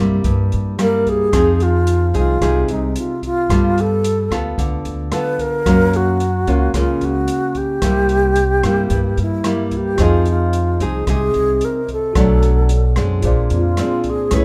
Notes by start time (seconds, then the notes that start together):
Already playing: G2 C3 G3 A#3
0.00 E4
0.24 G2, kick, closed hi-hat
0.52 G2, closed hi-hat
0.78 G3 A#3 E4, cross-stick, closed hi-hat
0.83 A#4
1.06 G#4, kick, closed hi-hat
1.32 F2 F3 C4 D#4 G#4, kick, cross-stick, closed hi-hat
1.60 F4, closed hi-hat
1.87 closed hi-hat
2.14 C2 C4 D#4 F4 G#4, kick, closed hi-hat
2.41 C2 C3 C4 D#4 G#4, kick, cross-stick, closed hi-hat
2.68 C2 D#4, closed hi-hat
2.96 F4, closed hi-hat
3.23 F4, kick, closed hi-hat
3.50 G2 G3 B3 F4 A4, kick, cross-stick, closed hi-hat
3.78 A4, closed hi-hat
4.04 closed hi-hat
4.31 D2 B3 F4 A4, kick, cross-stick, closed hi-hat
4.58 D2 D3, kick, closed hi-hat
4.85 D2, closed hi-hat
5.12 B3 F4 A4 B4, cross-stick, closed hi-hat
5.39 A#4, kick, closed hi-hat
5.66 F#2 F#3 A#3 C#4 F4, kick, cross-stick, closed hi-hat
5.93 F#4, closed hi-hat
6.20 closed hi-hat
6.47 C#2 A#3 C#4 F4, kick, closed hi-hat
6.74 C#2 C#3 A#3 C#4, kick, cross-stick, closed hi-hat
6.79 F4
7.01 C#2 F#4, closed hi-hat
7.28 closed hi-hat
7.55 G4, kick, closed hi-hat
7.82 C2 C3 G3 A#3 E4, kick, cross-stick, closed hi-hat
8.09 closed hi-hat
8.36 closed hi-hat
8.63 G2 G3 A#3 E4, kick, cross-stick, closed hi-hat
8.90 G2, kick, closed hi-hat
9.17 G2, closed hi-hat
9.22 E4
9.44 G3 A#3 E4, cross-stick, closed hi-hat
9.71 kick, closed hi-hat
9.77 G4
9.95 F2 F4 G#4 C5, kick, cross-stick, closed hi-hat
10.00 F3 C4 D#4 F4 G#4 D#5
10.25 closed hi-hat
10.31 F4
10.53 closed hi-hat
10.80 C2 C4 D#4 G#4, kick, closed hi-hat
10.84 G#4
11.07 C2 C3 C4 D#4 G#4, kick, cross-stick, closed hi-hat
11.11 G#4
11.34 C2, closed hi-hat
11.61 A#4, closed hi-hat
11.88 kick, closed hi-hat
11.94 A4
12.13 B1 B2 F#3 A3 D4 F#4 A4 C#5, kick, cross-stick, closed hi-hat
12.19 D5
12.43 closed hi-hat
12.69 closed hi-hat
12.96 F#2 G#3 C4 D4, kick, cross-stick, closed hi-hat
13.21 A#1 A#2 F4 G#4, kick, closed hi-hat
13.25 C5 D5
13.50 F2, closed hi-hat
13.57 F4
13.77 G#3 C4 D4, cross-stick, closed hi-hat
14.04 kick, closed hi-hat
14.10 G#4
14.30 A1 A3 C#4 E4 G#4 B4, kick, cross-stick, closed hi-hat
14.36 E4 C#5